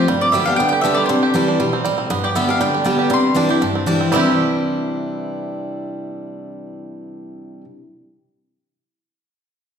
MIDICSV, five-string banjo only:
0, 0, Header, 1, 2, 480
1, 0, Start_track
1, 0, Key_signature, 0, "major"
1, 0, Tempo, 252525
1, 146, Time_signature, 4, 2, 24, 8
1, 18605, End_track
2, 0, Start_track
2, 0, Title_t, "Five-string banjo"
2, 0, Program_c, 0, 105
2, 157, Note_on_c, 0, 55, 72
2, 635, Note_off_c, 0, 55, 0
2, 643, Note_on_c, 0, 55, 59
2, 903, Note_on_c, 0, 62, 54
2, 1125, Note_on_c, 0, 59, 65
2, 1379, Note_on_c, 0, 67, 60
2, 1584, Note_off_c, 0, 62, 0
2, 1591, Note_on_c, 0, 62, 60
2, 1799, Note_off_c, 0, 59, 0
2, 1840, Note_off_c, 0, 55, 0
2, 1847, Note_on_c, 0, 55, 58
2, 2063, Note_off_c, 0, 62, 0
2, 2071, Note_on_c, 0, 62, 66
2, 2323, Note_off_c, 0, 67, 0
2, 2331, Note_on_c, 0, 67, 58
2, 2563, Note_off_c, 0, 55, 0
2, 2571, Note_on_c, 0, 55, 58
2, 2753, Note_off_c, 0, 62, 0
2, 2815, Note_on_c, 0, 62, 58
2, 2987, Note_off_c, 0, 67, 0
2, 3012, Note_off_c, 0, 55, 0
2, 3035, Note_on_c, 0, 55, 64
2, 3289, Note_on_c, 0, 60, 62
2, 3469, Note_off_c, 0, 62, 0
2, 3485, Note_off_c, 0, 55, 0
2, 3508, Note_on_c, 0, 55, 71
2, 3737, Note_off_c, 0, 60, 0
2, 3760, Note_on_c, 0, 60, 59
2, 3987, Note_off_c, 0, 60, 0
2, 3988, Note_off_c, 0, 55, 0
2, 4000, Note_on_c, 0, 59, 65
2, 4252, Note_on_c, 0, 67, 55
2, 4457, Note_off_c, 0, 59, 0
2, 4480, Note_on_c, 0, 59, 58
2, 4730, Note_on_c, 0, 62, 56
2, 4951, Note_on_c, 0, 55, 65
2, 5157, Note_off_c, 0, 59, 0
2, 5205, Note_off_c, 0, 62, 0
2, 5213, Note_on_c, 0, 62, 61
2, 5425, Note_off_c, 0, 55, 0
2, 5432, Note_on_c, 0, 55, 73
2, 5672, Note_off_c, 0, 67, 0
2, 5680, Note_on_c, 0, 67, 60
2, 5901, Note_off_c, 0, 55, 0
2, 5909, Note_on_c, 0, 55, 76
2, 6389, Note_off_c, 0, 62, 0
2, 6397, Note_on_c, 0, 62, 63
2, 6591, Note_off_c, 0, 55, 0
2, 6654, Note_off_c, 0, 67, 0
2, 6661, Note_on_c, 0, 67, 55
2, 6852, Note_off_c, 0, 62, 0
2, 6875, Note_on_c, 0, 62, 62
2, 7135, Note_on_c, 0, 60, 60
2, 7312, Note_off_c, 0, 67, 0
2, 7331, Note_off_c, 0, 62, 0
2, 7354, Note_on_c, 0, 62, 59
2, 7592, Note_off_c, 0, 60, 0
2, 7615, Note_on_c, 0, 60, 58
2, 7826, Note_on_c, 0, 55, 78
2, 7831, Note_off_c, 0, 62, 0
2, 7834, Note_off_c, 0, 60, 0
2, 7864, Note_on_c, 0, 60, 83
2, 7902, Note_on_c, 0, 64, 78
2, 7938, Note_on_c, 0, 67, 75
2, 14442, Note_off_c, 0, 55, 0
2, 14461, Note_off_c, 0, 60, 0
2, 14480, Note_off_c, 0, 64, 0
2, 14498, Note_off_c, 0, 67, 0
2, 18605, End_track
0, 0, End_of_file